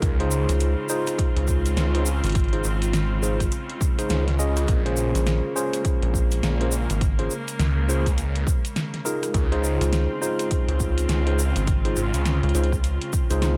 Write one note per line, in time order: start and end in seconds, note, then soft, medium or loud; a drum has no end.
0.00 0.46 C#2 loud
0.00 9.30 C#3 medium
0.00 9.30 G#3 medium
0.00 4.64 C4 medium
0.00 0.16 D#4 medium
0.00 0.16 F4 medium
0.00 4.64 F4 medium
0.00 0.16 G#4 medium
0.00 0.16 A#4 loud
0.00 kick loud
0.00 closed hi-hat medium
0.00 shaker soft
0.20 0.87 D#4 loud
0.20 0.87 F4 medium
0.20 0.87 G#4 medium
0.20 0.87 C5 loud
0.20 closed hi-hat soft
0.31 shaker loud
0.49 0.75 C#2 medium
0.49 snare soft
0.49 closed hi-hat medium
0.49 shaker medium
0.60 closed hi-hat medium
0.60 shaker soft
0.89 1.90 D#4 loud
0.89 1.90 F4 medium
0.89 1.90 G#4 medium
0.89 1.90 C5 loud
0.89 shaker loud
1.07 cross-stick soft
1.07 closed hi-hat medium
1.07 shaker medium
1.19 kick loud
1.19 closed hi-hat medium
1.19 shaker soft
1.36 1.75 C#2 loud
1.36 closed hi-hat soft
1.47 kick medium
1.47 shaker loud
1.65 closed hi-hat medium
1.65 shaker medium
1.77 2.21 C#2 loud
1.77 snare loud
1.77 closed hi-hat medium
1.77 shaker soft
1.95 2.08 D#4 medium
1.95 2.08 F4 medium
1.95 2.08 G#4 medium
1.95 2.08 C5 medium
1.95 closed hi-hat soft
2.06 shaker loud
2.24 2.63 G#1 loud
2.24 closed hi-hat medium
2.24 shaker medium
2.27 closed hi-hat soft
2.29 closed hi-hat soft
2.32 kick loud
2.32 closed hi-hat soft
2.35 closed hi-hat medium
2.35 shaker soft
2.44 closed hi-hat soft
2.48 closed hi-hat soft
2.53 2.66 D#4 medium
2.53 2.66 F4 medium
2.53 2.66 G#4 medium
2.53 2.66 C5 loud
2.53 closed hi-hat soft
2.64 3.50 G#1 loud
2.64 shaker medium
2.82 closed hi-hat medium
2.82 shaker medium
2.93 snare loud
2.93 closed hi-hat medium
2.93 shaker soft
3.23 3.41 D#4 medium
3.23 3.41 F4 medium
3.23 3.41 G#4 medium
3.23 3.41 C5 medium
3.23 shaker medium
3.40 kick medium
3.40 cross-stick soft
3.40 closed hi-hat medium
3.40 shaker medium
3.52 closed hi-hat medium
3.52 shaker soft
3.70 closed hi-hat soft
3.81 kick loud
3.81 shaker medium
3.99 4.23 D#4 loud
3.99 4.23 F4 medium
3.99 4.23 G#4 medium
3.99 4.23 C5 loud
3.99 closed hi-hat medium
3.99 shaker medium
4.09 4.66 C#2 loud
4.09 snare loud
4.09 closed hi-hat medium
4.09 shaker soft
4.28 snare soft
4.28 closed hi-hat soft
4.39 4.82 C#4 loud
4.39 4.82 F4 medium
4.39 4.82 G#4 medium
4.39 4.82 D#5 loud
4.39 shaker loud
4.56 cross-stick medium
4.56 closed hi-hat medium
4.56 shaker medium
4.68 5.12 A#1 loud
4.68 9.30 A#3 medium
4.68 kick loud
4.68 closed hi-hat medium
4.68 shaker soft
4.86 5.53 C#4 loud
4.86 5.53 F4 medium
4.86 5.53 G#4 medium
4.86 5.53 C5 loud
4.86 closed hi-hat soft
4.97 shaker medium
5.15 5.41 A#1 medium
5.15 snare soft
5.15 closed hi-hat soft
5.15 shaker medium
5.26 snare loud
5.26 closed hi-hat medium
5.26 shaker soft
5.56 6.56 C#4 loud
5.56 6.57 F4 medium
5.56 6.56 G#4 medium
5.56 6.56 C5 loud
5.56 shaker loud
5.73 cross-stick soft
5.73 closed hi-hat medium
5.73 shaker soft
5.85 kick loud
5.85 closed hi-hat medium
5.85 shaker soft
6.02 6.41 A#1 loud
6.02 closed hi-hat soft
6.14 kick medium
6.14 shaker medium
6.31 closed hi-hat medium
6.31 shaker soft
6.43 6.87 A#1 loud
6.43 snare loud
6.43 closed hi-hat medium
6.43 shaker soft
6.61 6.74 C#4 medium
6.61 6.74 F4 medium
6.61 6.74 G#4 medium
6.61 6.74 C5 medium
6.61 closed hi-hat soft
6.72 shaker loud
6.90 7.29 G#1 loud
6.90 closed hi-hat soft
6.90 shaker medium
7.01 kick loud
7.01 closed hi-hat medium
7.01 shaker soft
7.19 7.32 C#4 medium
7.19 7.32 F4 medium
7.19 7.32 G#4 medium
7.19 7.32 C5 loud
7.19 closed hi-hat soft
7.30 shaker medium
7.48 closed hi-hat soft
7.48 shaker medium
7.59 8.45 C#2 loud
7.59 snare loud
7.59 closed hi-hat medium
7.59 shaker soft
7.89 8.07 C#4 medium
7.89 8.07 F4 medium
7.89 8.07 G#4 medium
7.89 8.07 C5 loud
7.89 shaker medium
8.06 kick medium
8.06 cross-stick soft
8.06 closed hi-hat medium
8.06 shaker soft
8.18 closed hi-hat medium
8.18 shaker soft
8.36 closed hi-hat soft
8.47 kick loud
8.47 shaker loud
8.65 closed hi-hat medium
8.65 shaker medium
8.76 snare loud
8.76 closed hi-hat medium
8.76 shaker soft
8.94 snare soft
8.94 closed hi-hat soft
9.05 9.48 D#4 medium
9.05 9.48 F4 medium
9.05 9.48 G#4 medium
9.05 9.48 A#4 loud
9.05 shaker medium
9.23 cross-stick medium
9.23 closed hi-hat medium
9.23 shaker medium
9.34 9.78 C#2 loud
9.34 13.57 C#3 medium
9.34 13.57 G#3 medium
9.34 13.57 C4 medium
9.34 13.57 F4 medium
9.34 kick loud
9.34 closed hi-hat medium
9.34 shaker soft
9.52 10.19 D#4 loud
9.52 10.19 F4 medium
9.52 10.19 G#4 medium
9.52 10.19 C5 loud
9.52 closed hi-hat soft
9.64 shaker loud
9.81 10.07 C#2 loud
9.81 snare soft
9.81 closed hi-hat medium
9.81 shaker soft
9.93 snare loud
9.93 closed hi-hat medium
9.93 shaker soft
10.22 11.22 D#4 loud
10.22 11.22 F4 medium
10.22 11.22 G#4 medium
10.22 11.22 C5 loud
10.22 shaker loud
10.39 cross-stick soft
10.39 closed hi-hat medium
10.39 shaker soft
10.51 kick loud
10.51 closed hi-hat medium
10.51 shaker soft
10.68 11.07 C#2 loud
10.68 closed hi-hat soft
10.80 kick medium
10.80 shaker medium
10.98 closed hi-hat medium
10.98 shaker medium
11.09 11.53 C#2 loud
11.09 snare loud
11.09 closed hi-hat medium
11.09 shaker soft
11.27 11.40 D#4 medium
11.27 11.40 F4 medium
11.27 11.40 G#4 medium
11.27 11.40 C5 medium
11.27 closed hi-hat soft
11.39 shaker loud
11.56 11.95 G#1 loud
11.56 closed hi-hat medium
11.56 shaker soft
11.67 kick loud
11.67 closed hi-hat medium
11.67 shaker soft
11.85 11.98 D#4 medium
11.85 11.98 F4 medium
11.85 11.98 G#4 medium
11.85 11.98 C5 loud
11.85 closed hi-hat soft
11.96 12.11 G#1 loud
11.96 shaker medium
12.14 12.40 C#2 medium
12.14 closed hi-hat medium
12.14 shaker medium
12.26 snare loud
12.26 closed hi-hat medium
12.26 shaker soft
12.43 12.53 C#2 loud
12.43 closed hi-hat soft
12.49 closed hi-hat soft
12.55 12.99 C#2 loud
12.55 12.73 D#4 medium
12.55 12.73 F4 medium
12.55 12.73 G#4 medium
12.55 12.73 C5 loud
12.55 closed hi-hat soft
12.55 shaker medium
12.64 closed hi-hat soft
12.72 kick medium
12.72 cross-stick soft
12.72 shaker medium
12.84 closed hi-hat medium
12.84 shaker soft
13.02 closed hi-hat soft
13.13 kick loud
13.13 shaker medium
13.30 13.57 C#2 loud
13.30 13.55 D#4 loud
13.30 13.55 F4 medium
13.30 13.55 G#4 medium
13.30 13.55 C5 loud
13.30 closed hi-hat medium
13.30 shaker medium
13.42 snare loud
13.42 closed hi-hat medium
13.42 high tom medium
13.42 shaker soft